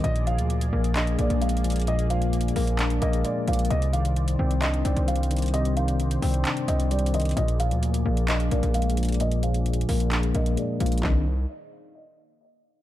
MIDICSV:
0, 0, Header, 1, 6, 480
1, 0, Start_track
1, 0, Key_signature, -3, "minor"
1, 0, Tempo, 458015
1, 43, Time_signature, 4, 2, 24, 8
1, 13439, End_track
2, 0, Start_track
2, 0, Title_t, "Grand piano"
2, 0, Program_c, 0, 0
2, 40, Note_on_c, 0, 75, 98
2, 233, Note_off_c, 0, 75, 0
2, 280, Note_on_c, 0, 77, 84
2, 959, Note_off_c, 0, 77, 0
2, 1003, Note_on_c, 0, 75, 88
2, 1194, Note_off_c, 0, 75, 0
2, 1246, Note_on_c, 0, 74, 75
2, 1436, Note_off_c, 0, 74, 0
2, 1481, Note_on_c, 0, 77, 73
2, 1933, Note_off_c, 0, 77, 0
2, 1971, Note_on_c, 0, 75, 88
2, 2159, Note_off_c, 0, 75, 0
2, 2201, Note_on_c, 0, 77, 75
2, 2880, Note_off_c, 0, 77, 0
2, 3169, Note_on_c, 0, 75, 87
2, 3358, Note_off_c, 0, 75, 0
2, 3403, Note_on_c, 0, 74, 76
2, 3594, Note_off_c, 0, 74, 0
2, 3647, Note_on_c, 0, 77, 75
2, 3837, Note_off_c, 0, 77, 0
2, 3882, Note_on_c, 0, 75, 98
2, 4074, Note_off_c, 0, 75, 0
2, 4118, Note_on_c, 0, 77, 83
2, 4799, Note_off_c, 0, 77, 0
2, 4836, Note_on_c, 0, 75, 90
2, 5030, Note_off_c, 0, 75, 0
2, 5084, Note_on_c, 0, 74, 74
2, 5275, Note_off_c, 0, 74, 0
2, 5320, Note_on_c, 0, 77, 79
2, 5772, Note_off_c, 0, 77, 0
2, 5803, Note_on_c, 0, 75, 94
2, 5994, Note_off_c, 0, 75, 0
2, 6042, Note_on_c, 0, 77, 75
2, 6721, Note_off_c, 0, 77, 0
2, 7002, Note_on_c, 0, 75, 87
2, 7194, Note_off_c, 0, 75, 0
2, 7242, Note_on_c, 0, 74, 76
2, 7433, Note_off_c, 0, 74, 0
2, 7487, Note_on_c, 0, 75, 79
2, 7677, Note_off_c, 0, 75, 0
2, 7720, Note_on_c, 0, 75, 98
2, 7912, Note_off_c, 0, 75, 0
2, 7960, Note_on_c, 0, 77, 81
2, 8640, Note_off_c, 0, 77, 0
2, 8682, Note_on_c, 0, 75, 92
2, 8874, Note_off_c, 0, 75, 0
2, 8925, Note_on_c, 0, 74, 78
2, 9115, Note_off_c, 0, 74, 0
2, 9162, Note_on_c, 0, 77, 75
2, 9614, Note_off_c, 0, 77, 0
2, 9650, Note_on_c, 0, 75, 91
2, 9839, Note_off_c, 0, 75, 0
2, 9882, Note_on_c, 0, 77, 76
2, 10561, Note_off_c, 0, 77, 0
2, 10850, Note_on_c, 0, 75, 87
2, 11038, Note_off_c, 0, 75, 0
2, 11083, Note_on_c, 0, 74, 76
2, 11274, Note_off_c, 0, 74, 0
2, 11328, Note_on_c, 0, 77, 77
2, 11517, Note_off_c, 0, 77, 0
2, 11564, Note_on_c, 0, 75, 84
2, 11787, Note_off_c, 0, 75, 0
2, 13439, End_track
3, 0, Start_track
3, 0, Title_t, "Analog synth pad"
3, 0, Program_c, 1, 89
3, 43, Note_on_c, 1, 58, 80
3, 43, Note_on_c, 1, 68, 77
3, 44, Note_on_c, 1, 74, 91
3, 3845, Note_off_c, 1, 58, 0
3, 3845, Note_off_c, 1, 68, 0
3, 3881, Note_on_c, 1, 72, 75
3, 3882, Note_on_c, 1, 51, 82
3, 5761, Note_off_c, 1, 74, 0
3, 5801, Note_on_c, 1, 74, 87
3, 7684, Note_off_c, 1, 51, 0
3, 7684, Note_off_c, 1, 72, 0
3, 7702, Note_off_c, 1, 74, 0
3, 7721, Note_on_c, 1, 58, 85
3, 7721, Note_on_c, 1, 74, 92
3, 7722, Note_on_c, 1, 68, 75
3, 11524, Note_off_c, 1, 58, 0
3, 11524, Note_off_c, 1, 68, 0
3, 11524, Note_off_c, 1, 74, 0
3, 11562, Note_on_c, 1, 74, 78
3, 11563, Note_on_c, 1, 63, 74
3, 11563, Note_on_c, 1, 72, 66
3, 11786, Note_off_c, 1, 63, 0
3, 11786, Note_off_c, 1, 72, 0
3, 11786, Note_off_c, 1, 74, 0
3, 13439, End_track
4, 0, Start_track
4, 0, Title_t, "Tine electric piano"
4, 0, Program_c, 2, 4
4, 0, Control_c, 2, 64, 127
4, 43, Note_on_c, 2, 46, 85
4, 58, Control_c, 2, 64, 0
4, 223, Control_c, 2, 64, 127
4, 283, Note_on_c, 2, 53, 80
4, 762, Note_on_c, 2, 58, 97
4, 1002, Note_on_c, 2, 62, 81
4, 1230, Note_off_c, 2, 58, 0
4, 1243, Note_off_c, 2, 46, 0
4, 1243, Note_on_c, 2, 58, 78
4, 1480, Note_on_c, 2, 56, 91
4, 1483, Note_off_c, 2, 53, 0
4, 1724, Note_on_c, 2, 53, 73
4, 1962, Note_on_c, 2, 46, 83
4, 2190, Note_off_c, 2, 53, 0
4, 2202, Note_on_c, 2, 53, 81
4, 2203, Note_off_c, 2, 62, 0
4, 2443, Note_off_c, 2, 58, 0
4, 2681, Note_off_c, 2, 56, 0
4, 2682, Note_on_c, 2, 58, 101
4, 2922, Note_on_c, 2, 62, 91
4, 3146, Note_off_c, 2, 58, 0
4, 3159, Note_on_c, 2, 58, 92
4, 3162, Note_off_c, 2, 46, 0
4, 3401, Note_on_c, 2, 56, 95
4, 3403, Note_off_c, 2, 53, 0
4, 3642, Note_on_c, 2, 53, 83
4, 3881, Note_off_c, 2, 58, 0
4, 3881, Note_on_c, 2, 48, 83
4, 3882, Note_off_c, 2, 53, 0
4, 3882, Note_off_c, 2, 56, 0
4, 3883, Note_off_c, 2, 62, 0
4, 3895, Control_c, 2, 64, 0
4, 4065, Control_c, 2, 64, 127
4, 4124, Note_on_c, 2, 51, 74
4, 4605, Note_on_c, 2, 60, 108
4, 4841, Note_on_c, 2, 62, 91
4, 5070, Note_off_c, 2, 60, 0
4, 5082, Note_off_c, 2, 48, 0
4, 5083, Note_on_c, 2, 60, 85
4, 5320, Note_on_c, 2, 55, 89
4, 5323, Note_off_c, 2, 51, 0
4, 5561, Note_on_c, 2, 51, 79
4, 5799, Note_on_c, 2, 48, 91
4, 6033, Note_off_c, 2, 51, 0
4, 6042, Note_off_c, 2, 62, 0
4, 6045, Note_on_c, 2, 51, 72
4, 6283, Note_off_c, 2, 60, 0
4, 6521, Note_off_c, 2, 55, 0
4, 6523, Note_on_c, 2, 60, 106
4, 6761, Note_on_c, 2, 62, 81
4, 6990, Note_off_c, 2, 60, 0
4, 7001, Note_off_c, 2, 48, 0
4, 7003, Note_on_c, 2, 60, 83
4, 7244, Note_off_c, 2, 51, 0
4, 7244, Note_on_c, 2, 55, 92
4, 7483, Note_on_c, 2, 51, 80
4, 7722, Note_off_c, 2, 62, 0
4, 7723, Note_off_c, 2, 51, 0
4, 7723, Note_off_c, 2, 55, 0
4, 7723, Note_off_c, 2, 60, 0
4, 7724, Note_on_c, 2, 46, 86
4, 7737, Control_c, 2, 64, 0
4, 7911, Control_c, 2, 64, 127
4, 7963, Note_on_c, 2, 53, 83
4, 8442, Note_on_c, 2, 58, 98
4, 8682, Note_on_c, 2, 62, 89
4, 8910, Note_off_c, 2, 58, 0
4, 8923, Note_off_c, 2, 46, 0
4, 8923, Note_on_c, 2, 58, 79
4, 9161, Note_on_c, 2, 56, 91
4, 9163, Note_off_c, 2, 53, 0
4, 9404, Note_on_c, 2, 53, 74
4, 9642, Note_on_c, 2, 46, 90
4, 9870, Note_off_c, 2, 53, 0
4, 9882, Note_off_c, 2, 62, 0
4, 9883, Note_on_c, 2, 53, 81
4, 10123, Note_off_c, 2, 58, 0
4, 10362, Note_off_c, 2, 56, 0
4, 10362, Note_on_c, 2, 58, 100
4, 10603, Note_on_c, 2, 62, 91
4, 10826, Note_off_c, 2, 58, 0
4, 10839, Note_on_c, 2, 58, 88
4, 10842, Note_off_c, 2, 46, 0
4, 11082, Note_on_c, 2, 56, 96
4, 11083, Note_off_c, 2, 53, 0
4, 11322, Note_on_c, 2, 53, 81
4, 11550, Note_off_c, 2, 62, 0
4, 11561, Note_off_c, 2, 58, 0
4, 11562, Note_off_c, 2, 53, 0
4, 11562, Note_off_c, 2, 56, 0
4, 11562, Note_on_c, 2, 51, 83
4, 11562, Note_on_c, 2, 60, 79
4, 11562, Note_on_c, 2, 62, 93
4, 11563, Note_on_c, 2, 55, 76
4, 11578, Control_c, 2, 64, 0
4, 11786, Note_off_c, 2, 51, 0
4, 11786, Note_off_c, 2, 55, 0
4, 11786, Note_off_c, 2, 60, 0
4, 11786, Note_off_c, 2, 62, 0
4, 13439, End_track
5, 0, Start_track
5, 0, Title_t, "808-style bass"
5, 0, Program_c, 3, 38
5, 43, Note_on_c, 3, 34, 111
5, 403, Note_on_c, 3, 38, 93
5, 419, Note_off_c, 3, 34, 0
5, 745, Note_off_c, 3, 38, 0
5, 763, Note_on_c, 3, 34, 103
5, 1223, Note_off_c, 3, 34, 0
5, 1242, Note_on_c, 3, 34, 106
5, 1358, Note_off_c, 3, 34, 0
5, 1362, Note_on_c, 3, 34, 101
5, 2640, Note_off_c, 3, 34, 0
5, 2682, Note_on_c, 3, 34, 104
5, 3143, Note_off_c, 3, 34, 0
5, 3162, Note_on_c, 3, 34, 104
5, 3393, Note_off_c, 3, 34, 0
5, 3642, Note_on_c, 3, 34, 106
5, 3873, Note_off_c, 3, 34, 0
5, 3882, Note_on_c, 3, 36, 109
5, 4574, Note_off_c, 3, 36, 0
5, 4602, Note_on_c, 3, 36, 106
5, 5063, Note_off_c, 3, 36, 0
5, 5082, Note_on_c, 3, 36, 110
5, 5198, Note_off_c, 3, 36, 0
5, 5202, Note_on_c, 3, 36, 103
5, 6481, Note_off_c, 3, 36, 0
5, 6522, Note_on_c, 3, 36, 106
5, 6753, Note_off_c, 3, 36, 0
5, 7003, Note_on_c, 3, 36, 104
5, 7694, Note_off_c, 3, 36, 0
5, 7722, Note_on_c, 3, 34, 113
5, 8082, Note_on_c, 3, 38, 98
5, 8098, Note_off_c, 3, 34, 0
5, 8425, Note_off_c, 3, 38, 0
5, 8442, Note_on_c, 3, 34, 105
5, 8903, Note_off_c, 3, 34, 0
5, 8922, Note_on_c, 3, 34, 109
5, 9038, Note_off_c, 3, 34, 0
5, 9043, Note_on_c, 3, 34, 103
5, 10321, Note_off_c, 3, 34, 0
5, 10363, Note_on_c, 3, 34, 107
5, 10824, Note_off_c, 3, 34, 0
5, 10843, Note_on_c, 3, 34, 107
5, 11073, Note_off_c, 3, 34, 0
5, 11323, Note_on_c, 3, 34, 104
5, 11553, Note_off_c, 3, 34, 0
5, 11563, Note_on_c, 3, 36, 109
5, 12009, Note_off_c, 3, 36, 0
5, 13439, End_track
6, 0, Start_track
6, 0, Title_t, "Drums"
6, 43, Note_on_c, 9, 42, 82
6, 148, Note_off_c, 9, 42, 0
6, 164, Note_on_c, 9, 42, 60
6, 269, Note_off_c, 9, 42, 0
6, 283, Note_on_c, 9, 42, 77
6, 388, Note_off_c, 9, 42, 0
6, 403, Note_on_c, 9, 42, 64
6, 508, Note_off_c, 9, 42, 0
6, 523, Note_on_c, 9, 42, 77
6, 628, Note_off_c, 9, 42, 0
6, 643, Note_on_c, 9, 42, 80
6, 748, Note_off_c, 9, 42, 0
6, 883, Note_on_c, 9, 42, 62
6, 988, Note_off_c, 9, 42, 0
6, 1001, Note_on_c, 9, 42, 77
6, 1003, Note_on_c, 9, 39, 125
6, 1106, Note_off_c, 9, 42, 0
6, 1108, Note_off_c, 9, 39, 0
6, 1124, Note_on_c, 9, 42, 58
6, 1229, Note_off_c, 9, 42, 0
6, 1243, Note_on_c, 9, 42, 88
6, 1348, Note_off_c, 9, 42, 0
6, 1364, Note_on_c, 9, 42, 61
6, 1469, Note_off_c, 9, 42, 0
6, 1483, Note_on_c, 9, 42, 76
6, 1563, Note_off_c, 9, 42, 0
6, 1563, Note_on_c, 9, 42, 74
6, 1643, Note_off_c, 9, 42, 0
6, 1643, Note_on_c, 9, 42, 65
6, 1723, Note_off_c, 9, 42, 0
6, 1723, Note_on_c, 9, 42, 86
6, 1782, Note_off_c, 9, 42, 0
6, 1782, Note_on_c, 9, 42, 73
6, 1802, Note_off_c, 9, 42, 0
6, 1802, Note_on_c, 9, 42, 57
6, 1842, Note_off_c, 9, 42, 0
6, 1842, Note_on_c, 9, 42, 60
6, 1882, Note_off_c, 9, 42, 0
6, 1882, Note_on_c, 9, 42, 48
6, 1902, Note_off_c, 9, 42, 0
6, 1902, Note_on_c, 9, 42, 49
6, 1963, Note_off_c, 9, 42, 0
6, 1963, Note_on_c, 9, 42, 84
6, 2068, Note_off_c, 9, 42, 0
6, 2084, Note_on_c, 9, 42, 60
6, 2188, Note_off_c, 9, 42, 0
6, 2203, Note_on_c, 9, 42, 76
6, 2308, Note_off_c, 9, 42, 0
6, 2323, Note_on_c, 9, 42, 64
6, 2428, Note_off_c, 9, 42, 0
6, 2442, Note_on_c, 9, 42, 67
6, 2522, Note_off_c, 9, 42, 0
6, 2522, Note_on_c, 9, 42, 67
6, 2602, Note_off_c, 9, 42, 0
6, 2602, Note_on_c, 9, 42, 66
6, 2682, Note_on_c, 9, 46, 89
6, 2707, Note_off_c, 9, 42, 0
6, 2787, Note_off_c, 9, 46, 0
6, 2802, Note_on_c, 9, 42, 63
6, 2907, Note_off_c, 9, 42, 0
6, 2920, Note_on_c, 9, 42, 76
6, 2922, Note_on_c, 9, 39, 127
6, 3025, Note_off_c, 9, 42, 0
6, 3027, Note_off_c, 9, 39, 0
6, 3043, Note_on_c, 9, 42, 58
6, 3148, Note_off_c, 9, 42, 0
6, 3163, Note_on_c, 9, 42, 91
6, 3267, Note_off_c, 9, 42, 0
6, 3284, Note_on_c, 9, 42, 61
6, 3389, Note_off_c, 9, 42, 0
6, 3401, Note_on_c, 9, 42, 78
6, 3506, Note_off_c, 9, 42, 0
6, 3642, Note_on_c, 9, 42, 72
6, 3702, Note_off_c, 9, 42, 0
6, 3702, Note_on_c, 9, 42, 73
6, 3762, Note_off_c, 9, 42, 0
6, 3762, Note_on_c, 9, 42, 67
6, 3822, Note_off_c, 9, 42, 0
6, 3822, Note_on_c, 9, 42, 68
6, 3883, Note_off_c, 9, 42, 0
6, 3883, Note_on_c, 9, 42, 79
6, 3988, Note_off_c, 9, 42, 0
6, 4004, Note_on_c, 9, 42, 59
6, 4108, Note_off_c, 9, 42, 0
6, 4123, Note_on_c, 9, 42, 79
6, 4228, Note_off_c, 9, 42, 0
6, 4244, Note_on_c, 9, 42, 66
6, 4349, Note_off_c, 9, 42, 0
6, 4364, Note_on_c, 9, 42, 76
6, 4469, Note_off_c, 9, 42, 0
6, 4483, Note_on_c, 9, 42, 81
6, 4588, Note_off_c, 9, 42, 0
6, 4723, Note_on_c, 9, 42, 66
6, 4828, Note_off_c, 9, 42, 0
6, 4842, Note_on_c, 9, 42, 75
6, 4843, Note_on_c, 9, 39, 120
6, 4946, Note_off_c, 9, 42, 0
6, 4948, Note_off_c, 9, 39, 0
6, 4964, Note_on_c, 9, 42, 58
6, 5069, Note_off_c, 9, 42, 0
6, 5083, Note_on_c, 9, 42, 91
6, 5188, Note_off_c, 9, 42, 0
6, 5204, Note_on_c, 9, 42, 59
6, 5309, Note_off_c, 9, 42, 0
6, 5323, Note_on_c, 9, 42, 78
6, 5403, Note_off_c, 9, 42, 0
6, 5403, Note_on_c, 9, 42, 73
6, 5483, Note_off_c, 9, 42, 0
6, 5483, Note_on_c, 9, 42, 66
6, 5562, Note_off_c, 9, 42, 0
6, 5562, Note_on_c, 9, 42, 87
6, 5623, Note_off_c, 9, 42, 0
6, 5623, Note_on_c, 9, 42, 76
6, 5643, Note_off_c, 9, 42, 0
6, 5643, Note_on_c, 9, 42, 58
6, 5683, Note_off_c, 9, 42, 0
6, 5683, Note_on_c, 9, 42, 62
6, 5723, Note_off_c, 9, 42, 0
6, 5723, Note_on_c, 9, 42, 45
6, 5743, Note_off_c, 9, 42, 0
6, 5743, Note_on_c, 9, 42, 49
6, 5803, Note_off_c, 9, 42, 0
6, 5803, Note_on_c, 9, 42, 79
6, 5908, Note_off_c, 9, 42, 0
6, 5924, Note_on_c, 9, 42, 60
6, 6029, Note_off_c, 9, 42, 0
6, 6044, Note_on_c, 9, 42, 77
6, 6149, Note_off_c, 9, 42, 0
6, 6164, Note_on_c, 9, 42, 65
6, 6269, Note_off_c, 9, 42, 0
6, 6284, Note_on_c, 9, 42, 78
6, 6389, Note_off_c, 9, 42, 0
6, 6403, Note_on_c, 9, 42, 81
6, 6508, Note_off_c, 9, 42, 0
6, 6523, Note_on_c, 9, 46, 87
6, 6628, Note_off_c, 9, 46, 0
6, 6643, Note_on_c, 9, 42, 64
6, 6748, Note_off_c, 9, 42, 0
6, 6761, Note_on_c, 9, 42, 78
6, 6763, Note_on_c, 9, 39, 122
6, 6866, Note_off_c, 9, 42, 0
6, 6867, Note_off_c, 9, 39, 0
6, 6883, Note_on_c, 9, 42, 61
6, 6988, Note_off_c, 9, 42, 0
6, 7002, Note_on_c, 9, 42, 90
6, 7107, Note_off_c, 9, 42, 0
6, 7123, Note_on_c, 9, 42, 62
6, 7228, Note_off_c, 9, 42, 0
6, 7242, Note_on_c, 9, 42, 79
6, 7322, Note_off_c, 9, 42, 0
6, 7322, Note_on_c, 9, 42, 71
6, 7402, Note_off_c, 9, 42, 0
6, 7402, Note_on_c, 9, 42, 66
6, 7482, Note_off_c, 9, 42, 0
6, 7482, Note_on_c, 9, 42, 84
6, 7542, Note_off_c, 9, 42, 0
6, 7542, Note_on_c, 9, 42, 79
6, 7562, Note_off_c, 9, 42, 0
6, 7562, Note_on_c, 9, 42, 56
6, 7602, Note_off_c, 9, 42, 0
6, 7602, Note_on_c, 9, 42, 62
6, 7642, Note_off_c, 9, 42, 0
6, 7642, Note_on_c, 9, 42, 49
6, 7662, Note_off_c, 9, 42, 0
6, 7662, Note_on_c, 9, 42, 49
6, 7722, Note_off_c, 9, 42, 0
6, 7722, Note_on_c, 9, 42, 83
6, 7827, Note_off_c, 9, 42, 0
6, 7843, Note_on_c, 9, 42, 60
6, 7948, Note_off_c, 9, 42, 0
6, 7962, Note_on_c, 9, 42, 80
6, 8067, Note_off_c, 9, 42, 0
6, 8083, Note_on_c, 9, 42, 65
6, 8188, Note_off_c, 9, 42, 0
6, 8203, Note_on_c, 9, 42, 80
6, 8308, Note_off_c, 9, 42, 0
6, 8322, Note_on_c, 9, 42, 84
6, 8427, Note_off_c, 9, 42, 0
6, 8563, Note_on_c, 9, 42, 64
6, 8667, Note_off_c, 9, 42, 0
6, 8681, Note_on_c, 9, 42, 76
6, 8683, Note_on_c, 9, 39, 125
6, 8786, Note_off_c, 9, 42, 0
6, 8787, Note_off_c, 9, 39, 0
6, 8803, Note_on_c, 9, 42, 58
6, 8908, Note_off_c, 9, 42, 0
6, 8923, Note_on_c, 9, 42, 88
6, 9028, Note_off_c, 9, 42, 0
6, 9044, Note_on_c, 9, 42, 60
6, 9149, Note_off_c, 9, 42, 0
6, 9163, Note_on_c, 9, 42, 81
6, 9243, Note_off_c, 9, 42, 0
6, 9243, Note_on_c, 9, 42, 72
6, 9323, Note_off_c, 9, 42, 0
6, 9323, Note_on_c, 9, 42, 67
6, 9403, Note_off_c, 9, 42, 0
6, 9403, Note_on_c, 9, 42, 89
6, 9462, Note_off_c, 9, 42, 0
6, 9462, Note_on_c, 9, 42, 75
6, 9482, Note_off_c, 9, 42, 0
6, 9482, Note_on_c, 9, 42, 57
6, 9522, Note_off_c, 9, 42, 0
6, 9522, Note_on_c, 9, 42, 61
6, 9562, Note_off_c, 9, 42, 0
6, 9562, Note_on_c, 9, 42, 49
6, 9582, Note_off_c, 9, 42, 0
6, 9582, Note_on_c, 9, 42, 49
6, 9642, Note_off_c, 9, 42, 0
6, 9642, Note_on_c, 9, 42, 82
6, 9747, Note_off_c, 9, 42, 0
6, 9763, Note_on_c, 9, 42, 60
6, 9867, Note_off_c, 9, 42, 0
6, 9882, Note_on_c, 9, 42, 77
6, 9987, Note_off_c, 9, 42, 0
6, 10002, Note_on_c, 9, 42, 62
6, 10107, Note_off_c, 9, 42, 0
6, 10122, Note_on_c, 9, 42, 70
6, 10202, Note_off_c, 9, 42, 0
6, 10202, Note_on_c, 9, 42, 69
6, 10282, Note_off_c, 9, 42, 0
6, 10282, Note_on_c, 9, 42, 70
6, 10362, Note_on_c, 9, 46, 91
6, 10387, Note_off_c, 9, 42, 0
6, 10467, Note_off_c, 9, 46, 0
6, 10482, Note_on_c, 9, 42, 65
6, 10587, Note_off_c, 9, 42, 0
6, 10600, Note_on_c, 9, 42, 78
6, 10602, Note_on_c, 9, 39, 125
6, 10705, Note_off_c, 9, 42, 0
6, 10706, Note_off_c, 9, 39, 0
6, 10723, Note_on_c, 9, 42, 58
6, 10827, Note_off_c, 9, 42, 0
6, 10842, Note_on_c, 9, 42, 90
6, 10947, Note_off_c, 9, 42, 0
6, 10964, Note_on_c, 9, 42, 60
6, 11069, Note_off_c, 9, 42, 0
6, 11081, Note_on_c, 9, 42, 78
6, 11186, Note_off_c, 9, 42, 0
6, 11322, Note_on_c, 9, 42, 76
6, 11383, Note_off_c, 9, 42, 0
6, 11383, Note_on_c, 9, 42, 75
6, 11443, Note_off_c, 9, 42, 0
6, 11443, Note_on_c, 9, 42, 72
6, 11503, Note_off_c, 9, 42, 0
6, 11503, Note_on_c, 9, 42, 70
6, 11563, Note_on_c, 9, 36, 104
6, 11563, Note_on_c, 9, 39, 91
6, 11607, Note_off_c, 9, 42, 0
6, 11667, Note_off_c, 9, 39, 0
6, 11668, Note_off_c, 9, 36, 0
6, 13439, End_track
0, 0, End_of_file